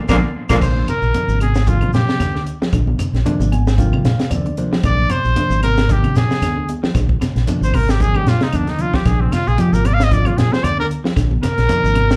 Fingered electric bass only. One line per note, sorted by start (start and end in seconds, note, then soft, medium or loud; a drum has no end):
0.09 0.20 A#1 loud
0.50 0.59 A#1 loud
0.61 0.83 A#1 medium
1.02 1.12 A#1 medium
1.28 1.81 G#1 medium
1.93 2.05 A#2 medium
2.20 2.41 D2 medium
2.73 2.94 A#1 medium
2.98 muted fingered electric bass stroke soft
3.13 3.23 A#1 medium
3.39 3.92 G#1 medium
4.05 4.17 A#2 medium
4.31 4.52 D2 medium
4.84 5.05 A#1 medium
5.24 5.34 A#1 medium
5.50 6.03 G#1 loud
6.16 6.27 A#2 medium
6.42 6.63 D2 medium
6.95 7.16 A#1 medium
7.21 muted fingered electric bass stroke soft
7.35 7.45 A#1 medium
7.61 8.14 G#1 medium
8.26 8.38 A#2 medium
8.53 8.74 D2 medium
9.05 9.27 A#1 medium
9.47 9.57 A#1 medium
9.72 10.25 G#1 medium
10.38 10.49 A#2 medium
10.64 10.85 D2 loud
11.17 11.38 A#1 medium
11.43 muted fingered electric bass stroke soft
11.58 11.67 A#1 medium
11.83 12.16 G#1 loud